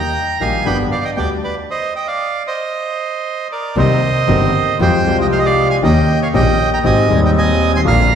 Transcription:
0.00 0.38 G5 medium
0.00 0.43 A#5 medium
0.39 0.61 A#1 medium
0.39 0.62 A#1 medium
0.39 0.62 A#2 medium
0.39 0.61 D#3 soft
0.39 0.62 G3 soft
0.39 0.61 A#3 soft
0.39 0.62 A#3 soft
0.39 0.61 D#4 soft
0.39 0.62 G4 medium
0.39 0.62 G4 soft
0.39 0.64 F5 medium
0.39 0.67 G#5 medium
0.65 0.87 G1 medium
0.65 0.87 G2 medium
0.65 0.87 D3 medium
0.65 0.87 G3 medium
0.65 0.87 B3 medium
0.65 0.87 D4 medium
0.65 0.87 G4 medium
0.65 0.78 G5 medium
0.65 0.77 B5 medium
0.92 1.04 D5 medium
0.92 1.05 F5 medium
1.05 1.10 D#5 medium
1.05 1.10 G5 medium
1.16 1.38 D2 medium
1.16 1.38 D3 soft
1.16 1.38 G3 soft
1.16 1.38 B3 soft
1.16 1.38 D4 soft
1.16 1.38 G4 medium
1.16 1.39 G4 soft
1.16 1.30 D5 medium
1.16 1.28 G5 medium
1.44 1.55 B4 medium
1.44 1.55 D5 medium
1.70 1.93 C5 medium
1.70 1.94 D#5 medium
1.96 2.07 D#5 medium
1.96 2.07 G5 medium
2.07 2.43 D5 medium
2.07 2.43 F5 medium
2.47 3.48 C5 medium
2.47 3.48 D#5 medium
3.52 3.76 A#4 medium
3.52 3.76 D5 medium
3.76 3.98 C2 loud
3.76 3.98 C2 medium
3.76 3.99 C3 medium
3.76 3.98 D#3 medium
3.76 3.99 A#3 medium
3.76 3.98 C4 medium
3.76 3.99 C4 medium
3.76 3.98 D#4 medium
3.76 3.99 G4 medium
3.76 3.98 A#4 medium
3.76 4.77 C5 medium
3.76 4.78 D#5 loud
4.28 4.50 G1 loud
4.28 4.51 G1 medium
4.28 4.50 G2 medium
4.28 4.50 D#3 medium
4.28 4.50 A#3 medium
4.28 4.50 C4 medium
4.28 4.51 C4 medium
4.28 4.50 D#4 medium
4.28 4.50 G4 medium
4.28 4.50 A#4 medium
4.80 5.02 F2 loud
4.80 5.02 F2 medium
4.80 5.02 F3 medium
4.80 5.02 G#3 medium
4.80 5.02 C4 medium
4.80 5.02 F4 medium
4.80 5.02 G4 medium
4.80 5.17 C5 medium
4.80 5.17 G5 loud
5.05 5.79 C2 medium
5.05 5.79 C2 loud
5.05 5.79 C3 medium
5.05 5.78 F3 medium
5.05 5.79 G#3 medium
5.05 5.80 C4 medium
5.05 5.79 F4 medium
5.05 5.79 G4 loud
5.09 5.80 G4 medium
5.21 5.26 D#5 medium
5.21 5.27 G5 medium
5.32 5.38 C5 medium
5.32 5.39 F5 medium
5.39 5.46 D#5 medium
5.45 5.68 D5 medium
5.45 5.68 F5 loud
5.70 5.76 F5 medium
5.70 5.76 G#5 loud
5.82 6.04 D#2 loud
5.82 6.04 D#2 medium
5.82 6.04 D#3 loud
5.82 6.05 A#3 medium
5.82 6.04 C#4 medium
5.82 6.05 C#4 medium
5.82 6.04 D#4 medium
5.82 6.04 G4 medium
5.82 6.05 G4 medium
5.82 6.19 D#5 medium
5.82 6.20 G5 loud
6.22 6.28 C#5 medium
6.22 6.28 F5 medium
6.34 6.55 A#1 medium
6.34 6.55 A#1 loud
6.34 6.55 A#2 loud
6.34 6.55 D#3 medium
6.34 6.55 A#3 medium
6.34 6.55 C#4 medium
6.34 6.55 D#4 medium
6.34 6.55 G4 loud
6.34 6.55 G4 medium
6.34 6.69 D#5 medium
6.34 6.70 G5 loud
6.73 6.79 G5 medium
6.73 6.79 A#5 loud
6.84 7.05 G#1 loud
6.84 7.05 G#1 medium
6.84 7.06 G#2 medium
6.84 7.05 D#3 medium
6.84 7.05 G#3 medium
6.84 7.06 G#3 medium
6.84 7.05 C4 medium
6.84 7.06 C4 medium
6.84 7.06 G4 loud
6.84 7.06 G4 medium
6.84 7.20 D#5 medium
6.84 7.20 G#5 loud
7.08 7.82 D#1 medium
7.08 7.81 D#2 medium
7.08 7.82 D#2 loud
7.08 7.81 D#3 medium
7.08 7.81 G3 loud
7.08 7.83 G3 medium
7.08 7.81 G#3 medium
7.08 7.81 C4 medium
7.08 7.82 C4 medium
7.25 7.30 D#5 medium
7.25 7.31 G5 medium
7.38 7.72 D#5 medium
7.38 7.72 G#5 loud
7.74 7.80 G#5 medium
7.74 7.81 C6 loud
7.84 8.07 A#1 loud
7.84 8.06 A#2 loud
7.84 8.06 D3 medium
7.84 8.06 F3 medium
7.84 8.06 A#3 medium
7.84 8.07 A#3 medium
7.84 8.06 D4 medium
7.84 8.07 F4 loud
7.84 8.07 F4 medium
7.84 8.15 F5 medium
7.84 8.15 A#5 loud

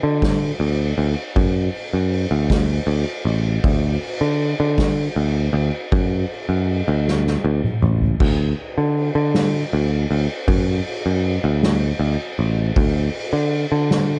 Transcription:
0.03 0.51 D3 medium
0.22 kick medium
0.22 snare loud
0.22 ride loud
0.60 0.92 D2 medium
0.60 ride medium
0.98 1.14 D2 medium
0.98 ride medium
1.36 1.68 F#2 loud
1.36 kick loud
1.36 ride medium
1.74 ride medium
1.93 2.25 F#2 medium
2.12 ride medium
2.31 2.79 D2 medium
2.50 kick medium
2.50 snare loud
2.50 ride loud
2.87 3.04 D2 medium
2.87 ride medium
3.25 3.58 A1 medium
3.25 ride medium
3.64 3.96 D2 loud
3.64 kick loud
3.64 ride loud
4.02 ride medium
4.21 4.53 D3 medium
4.40 ride medium
4.60 5.07 D3 loud
4.78 kick medium
4.78 snare loud
4.78 ride loud
5.16 5.48 D2 medium
5.16 ride medium
5.53 5.70 D2 medium
5.53 ride medium
5.92 6.24 F#2 loud
5.92 kick loud
5.92 ride medium
6.30 ride medium
6.49 6.81 F#2 medium
6.69 ride medium
6.88 7.35 D2 loud
7.08 snare medium
7.27 snare medium
7.44 7.60 D2 loud
7.64 mid tom medium
7.82 8.14 A1 loud
7.82 mid tom medium
8.01 floor tom medium
8.20 8.52 D2 loud
8.20 kick loud
8.20 crash loud
8.58 ride medium
8.78 9.09 D3 medium
8.97 ride medium
9.15 9.63 D3 medium
9.34 snare loud
9.34 ride loud
9.72 10.05 D2 medium
9.72 ride medium
10.09 10.26 D2 medium
10.09 ride medium
10.48 10.80 F#2 loud
10.48 kick loud
10.48 ride loud
10.86 ride medium
11.06 11.37 F#2 medium
11.24 ride medium
11.44 11.91 D2 loud
11.62 snare loud
11.62 ride loud
11.99 12.16 D2 medium
11.99 ride medium
12.39 12.70 A1 medium
12.39 ride medium
12.76 13.08 D2 medium
12.76 kick loud
12.76 ride loud
13.14 ride medium
13.33 13.65 D3 medium
13.52 ride medium
13.72 14.19 D3 medium
13.90 snare loud
13.90 ride medium

